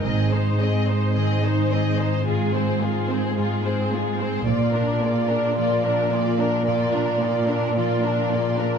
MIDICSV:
0, 0, Header, 1, 8, 480
1, 0, Start_track
1, 0, Tempo, 550964
1, 48, Time_signature, 4, 2, 24, 8
1, 7652, End_track
2, 0, Start_track
2, 0, Title_t, "Violin section"
2, 0, Program_c, 0, 48
2, 37, Note_on_c, 0, 75, 38
2, 267, Note_off_c, 0, 75, 0
2, 280, Note_on_c, 0, 72, 32
2, 526, Note_off_c, 0, 72, 0
2, 527, Note_on_c, 0, 75, 34
2, 768, Note_off_c, 0, 75, 0
2, 771, Note_on_c, 0, 72, 31
2, 1006, Note_on_c, 0, 75, 36
2, 1010, Note_off_c, 0, 72, 0
2, 1231, Note_off_c, 0, 75, 0
2, 1252, Note_on_c, 0, 72, 36
2, 1492, Note_off_c, 0, 72, 0
2, 1496, Note_on_c, 0, 75, 33
2, 1735, Note_on_c, 0, 72, 33
2, 1736, Note_off_c, 0, 75, 0
2, 1972, Note_on_c, 0, 68, 42
2, 1976, Note_off_c, 0, 72, 0
2, 2197, Note_off_c, 0, 68, 0
2, 2214, Note_on_c, 0, 72, 37
2, 2455, Note_off_c, 0, 72, 0
2, 2458, Note_on_c, 0, 68, 37
2, 2697, Note_off_c, 0, 68, 0
2, 2699, Note_on_c, 0, 72, 35
2, 2937, Note_off_c, 0, 72, 0
2, 2939, Note_on_c, 0, 68, 36
2, 3160, Note_off_c, 0, 68, 0
2, 3179, Note_on_c, 0, 72, 38
2, 3417, Note_off_c, 0, 72, 0
2, 3417, Note_on_c, 0, 68, 37
2, 3655, Note_off_c, 0, 68, 0
2, 3660, Note_on_c, 0, 72, 42
2, 3893, Note_on_c, 0, 74, 44
2, 3895, Note_off_c, 0, 72, 0
2, 4113, Note_off_c, 0, 74, 0
2, 4132, Note_on_c, 0, 70, 39
2, 4370, Note_off_c, 0, 70, 0
2, 4374, Note_on_c, 0, 74, 39
2, 4604, Note_on_c, 0, 70, 37
2, 4611, Note_off_c, 0, 74, 0
2, 4847, Note_off_c, 0, 70, 0
2, 4851, Note_on_c, 0, 74, 43
2, 5075, Note_off_c, 0, 74, 0
2, 5094, Note_on_c, 0, 70, 42
2, 5330, Note_on_c, 0, 74, 42
2, 5334, Note_off_c, 0, 70, 0
2, 5569, Note_on_c, 0, 70, 42
2, 5571, Note_off_c, 0, 74, 0
2, 5807, Note_on_c, 0, 74, 45
2, 5808, Note_off_c, 0, 70, 0
2, 6029, Note_off_c, 0, 74, 0
2, 6044, Note_on_c, 0, 70, 38
2, 6283, Note_off_c, 0, 70, 0
2, 6288, Note_on_c, 0, 74, 40
2, 6517, Note_on_c, 0, 70, 39
2, 6526, Note_off_c, 0, 74, 0
2, 6760, Note_off_c, 0, 70, 0
2, 6765, Note_on_c, 0, 74, 45
2, 6988, Note_off_c, 0, 74, 0
2, 7002, Note_on_c, 0, 70, 43
2, 7235, Note_on_c, 0, 74, 39
2, 7244, Note_off_c, 0, 70, 0
2, 7480, Note_off_c, 0, 74, 0
2, 7486, Note_on_c, 0, 70, 38
2, 7652, Note_off_c, 0, 70, 0
2, 7652, End_track
3, 0, Start_track
3, 0, Title_t, "Harp"
3, 0, Program_c, 1, 46
3, 51, Note_on_c, 1, 44, 34
3, 290, Note_on_c, 1, 68, 30
3, 529, Note_on_c, 1, 67, 28
3, 762, Note_off_c, 1, 68, 0
3, 773, Note_on_c, 1, 68, 31
3, 937, Note_off_c, 1, 67, 0
3, 1011, Note_on_c, 1, 51, 32
3, 1242, Note_off_c, 1, 68, 0
3, 1253, Note_on_c, 1, 68, 33
3, 1496, Note_on_c, 1, 67, 28
3, 1726, Note_off_c, 1, 68, 0
3, 1737, Note_on_c, 1, 68, 30
3, 1905, Note_off_c, 1, 67, 0
3, 1971, Note_off_c, 1, 44, 0
3, 1982, Note_on_c, 1, 44, 38
3, 1995, Note_off_c, 1, 51, 0
3, 2216, Note_on_c, 1, 72, 38
3, 2456, Note_on_c, 1, 70, 29
3, 2690, Note_off_c, 1, 72, 0
3, 2701, Note_on_c, 1, 72, 35
3, 2863, Note_off_c, 1, 70, 0
3, 2933, Note_off_c, 1, 44, 0
3, 2944, Note_on_c, 1, 44, 39
3, 3182, Note_on_c, 1, 65, 37
3, 3423, Note_on_c, 1, 63, 27
3, 3654, Note_off_c, 1, 72, 0
3, 3664, Note_on_c, 1, 72, 34
3, 3825, Note_off_c, 1, 63, 0
3, 3899, Note_on_c, 1, 46, 44
3, 3912, Note_off_c, 1, 68, 0
3, 3915, Note_off_c, 1, 44, 0
3, 3916, Note_off_c, 1, 72, 0
3, 4137, Note_on_c, 1, 70, 37
3, 4377, Note_on_c, 1, 68, 31
3, 4606, Note_off_c, 1, 70, 0
3, 4616, Note_on_c, 1, 70, 40
3, 4781, Note_off_c, 1, 68, 0
3, 4855, Note_on_c, 1, 53, 38
3, 5083, Note_off_c, 1, 70, 0
3, 5094, Note_on_c, 1, 70, 38
3, 5338, Note_on_c, 1, 68, 32
3, 5565, Note_off_c, 1, 70, 0
3, 5575, Note_on_c, 1, 70, 39
3, 5741, Note_off_c, 1, 68, 0
3, 5799, Note_off_c, 1, 46, 0
3, 5809, Note_on_c, 1, 46, 44
3, 6037, Note_off_c, 1, 65, 0
3, 6048, Note_on_c, 1, 65, 39
3, 6286, Note_on_c, 1, 63, 31
3, 6511, Note_off_c, 1, 70, 0
3, 6522, Note_on_c, 1, 70, 41
3, 6693, Note_off_c, 1, 63, 0
3, 6756, Note_off_c, 1, 53, 0
3, 6767, Note_on_c, 1, 53, 41
3, 6994, Note_off_c, 1, 70, 0
3, 7004, Note_on_c, 1, 70, 40
3, 7246, Note_on_c, 1, 68, 32
3, 7476, Note_off_c, 1, 70, 0
3, 7487, Note_on_c, 1, 70, 40
3, 7652, Note_off_c, 1, 46, 0
3, 7652, Note_off_c, 1, 53, 0
3, 7652, Note_off_c, 1, 65, 0
3, 7652, Note_off_c, 1, 68, 0
3, 7652, Note_off_c, 1, 70, 0
3, 7652, End_track
4, 0, Start_track
4, 0, Title_t, "French horn section"
4, 0, Program_c, 2, 60
4, 47, Note_on_c, 2, 60, 39
4, 50, Note_on_c, 2, 63, 37
4, 1942, Note_off_c, 2, 63, 0
4, 1975, Note_on_c, 2, 65, 43
4, 3752, Note_off_c, 2, 60, 0
4, 3752, Note_off_c, 2, 65, 0
4, 3900, Note_on_c, 2, 65, 48
4, 3900, Note_on_c, 2, 74, 47
4, 7652, Note_off_c, 2, 65, 0
4, 7652, Note_off_c, 2, 74, 0
4, 7652, End_track
5, 0, Start_track
5, 0, Title_t, "Violin section"
5, 0, Program_c, 3, 48
5, 41, Note_on_c, 3, 68, 33
5, 269, Note_off_c, 3, 68, 0
5, 290, Note_on_c, 3, 72, 29
5, 525, Note_on_c, 3, 68, 31
5, 531, Note_off_c, 3, 72, 0
5, 767, Note_off_c, 3, 68, 0
5, 772, Note_on_c, 3, 72, 34
5, 1010, Note_off_c, 3, 72, 0
5, 1015, Note_on_c, 3, 68, 34
5, 1236, Note_off_c, 3, 68, 0
5, 1251, Note_on_c, 3, 72, 32
5, 1490, Note_on_c, 3, 68, 32
5, 1492, Note_off_c, 3, 72, 0
5, 1733, Note_off_c, 3, 68, 0
5, 1733, Note_on_c, 3, 72, 35
5, 1970, Note_on_c, 3, 65, 36
5, 1975, Note_off_c, 3, 72, 0
5, 2196, Note_off_c, 3, 65, 0
5, 2209, Note_on_c, 3, 68, 33
5, 2451, Note_on_c, 3, 65, 34
5, 2452, Note_off_c, 3, 68, 0
5, 2693, Note_off_c, 3, 65, 0
5, 2693, Note_on_c, 3, 68, 37
5, 2934, Note_off_c, 3, 68, 0
5, 2935, Note_on_c, 3, 65, 40
5, 3158, Note_off_c, 3, 65, 0
5, 3177, Note_on_c, 3, 68, 36
5, 3416, Note_off_c, 3, 68, 0
5, 3427, Note_on_c, 3, 65, 34
5, 3660, Note_off_c, 3, 65, 0
5, 3674, Note_on_c, 3, 68, 35
5, 3902, Note_off_c, 3, 68, 0
5, 3909, Note_on_c, 3, 65, 36
5, 4122, Note_off_c, 3, 65, 0
5, 4143, Note_on_c, 3, 62, 36
5, 4375, Note_off_c, 3, 62, 0
5, 4378, Note_on_c, 3, 65, 41
5, 4613, Note_off_c, 3, 65, 0
5, 4616, Note_on_c, 3, 62, 40
5, 4853, Note_off_c, 3, 62, 0
5, 4855, Note_on_c, 3, 65, 46
5, 5077, Note_off_c, 3, 65, 0
5, 5096, Note_on_c, 3, 62, 40
5, 5327, Note_on_c, 3, 65, 38
5, 5335, Note_off_c, 3, 62, 0
5, 5568, Note_on_c, 3, 62, 38
5, 5569, Note_off_c, 3, 65, 0
5, 5802, Note_on_c, 3, 65, 43
5, 5808, Note_off_c, 3, 62, 0
5, 6026, Note_off_c, 3, 65, 0
5, 6044, Note_on_c, 3, 62, 39
5, 6283, Note_off_c, 3, 62, 0
5, 6290, Note_on_c, 3, 65, 39
5, 6523, Note_on_c, 3, 62, 42
5, 6527, Note_off_c, 3, 65, 0
5, 6763, Note_off_c, 3, 62, 0
5, 6766, Note_on_c, 3, 65, 45
5, 6989, Note_off_c, 3, 65, 0
5, 6998, Note_on_c, 3, 62, 41
5, 7232, Note_on_c, 3, 65, 39
5, 7242, Note_off_c, 3, 62, 0
5, 7471, Note_on_c, 3, 62, 39
5, 7479, Note_off_c, 3, 65, 0
5, 7652, Note_off_c, 3, 62, 0
5, 7652, End_track
6, 0, Start_track
6, 0, Title_t, "Viola section"
6, 0, Program_c, 4, 48
6, 52, Note_on_c, 4, 60, 34
6, 275, Note_off_c, 4, 60, 0
6, 288, Note_on_c, 4, 63, 31
6, 530, Note_off_c, 4, 63, 0
6, 537, Note_on_c, 4, 60, 34
6, 773, Note_off_c, 4, 60, 0
6, 780, Note_on_c, 4, 63, 31
6, 1011, Note_on_c, 4, 60, 37
6, 1014, Note_off_c, 4, 63, 0
6, 1234, Note_off_c, 4, 60, 0
6, 1255, Note_on_c, 4, 63, 35
6, 1494, Note_off_c, 4, 63, 0
6, 1497, Note_on_c, 4, 60, 32
6, 1736, Note_off_c, 4, 60, 0
6, 1742, Note_on_c, 4, 63, 33
6, 1972, Note_on_c, 4, 56, 40
6, 1980, Note_off_c, 4, 63, 0
6, 2197, Note_off_c, 4, 56, 0
6, 2220, Note_on_c, 4, 60, 35
6, 2457, Note_on_c, 4, 56, 37
6, 2458, Note_off_c, 4, 60, 0
6, 2695, Note_on_c, 4, 60, 38
6, 2696, Note_off_c, 4, 56, 0
6, 2935, Note_off_c, 4, 60, 0
6, 2937, Note_on_c, 4, 56, 37
6, 3159, Note_off_c, 4, 56, 0
6, 3177, Note_on_c, 4, 60, 38
6, 3415, Note_off_c, 4, 60, 0
6, 3419, Note_on_c, 4, 56, 40
6, 3656, Note_off_c, 4, 56, 0
6, 3663, Note_on_c, 4, 60, 36
6, 3894, Note_on_c, 4, 58, 42
6, 3896, Note_off_c, 4, 60, 0
6, 4114, Note_off_c, 4, 58, 0
6, 4133, Note_on_c, 4, 62, 40
6, 4370, Note_off_c, 4, 62, 0
6, 4379, Note_on_c, 4, 58, 39
6, 4614, Note_off_c, 4, 58, 0
6, 4615, Note_on_c, 4, 62, 39
6, 4852, Note_off_c, 4, 62, 0
6, 4857, Note_on_c, 4, 58, 44
6, 5078, Note_off_c, 4, 58, 0
6, 5094, Note_on_c, 4, 62, 41
6, 5333, Note_off_c, 4, 62, 0
6, 5333, Note_on_c, 4, 58, 39
6, 5572, Note_off_c, 4, 58, 0
6, 5572, Note_on_c, 4, 62, 39
6, 5806, Note_on_c, 4, 58, 47
6, 5810, Note_off_c, 4, 62, 0
6, 6028, Note_off_c, 4, 58, 0
6, 6048, Note_on_c, 4, 62, 42
6, 6279, Note_on_c, 4, 58, 42
6, 6286, Note_off_c, 4, 62, 0
6, 6519, Note_on_c, 4, 62, 39
6, 6521, Note_off_c, 4, 58, 0
6, 6759, Note_on_c, 4, 58, 44
6, 6762, Note_off_c, 4, 62, 0
6, 6985, Note_off_c, 4, 58, 0
6, 7000, Note_on_c, 4, 62, 43
6, 7242, Note_off_c, 4, 62, 0
6, 7244, Note_on_c, 4, 58, 38
6, 7485, Note_off_c, 4, 58, 0
6, 7485, Note_on_c, 4, 62, 40
6, 7652, Note_off_c, 4, 62, 0
6, 7652, End_track
7, 0, Start_track
7, 0, Title_t, "Cello section"
7, 0, Program_c, 5, 48
7, 47, Note_on_c, 5, 44, 40
7, 3857, Note_off_c, 5, 44, 0
7, 3895, Note_on_c, 5, 46, 50
7, 7652, Note_off_c, 5, 46, 0
7, 7652, End_track
8, 0, Start_track
8, 0, Title_t, "Double bass section"
8, 0, Program_c, 6, 48
8, 44, Note_on_c, 6, 32, 37
8, 495, Note_off_c, 6, 32, 0
8, 3891, Note_on_c, 6, 34, 43
8, 4335, Note_off_c, 6, 34, 0
8, 7652, End_track
0, 0, End_of_file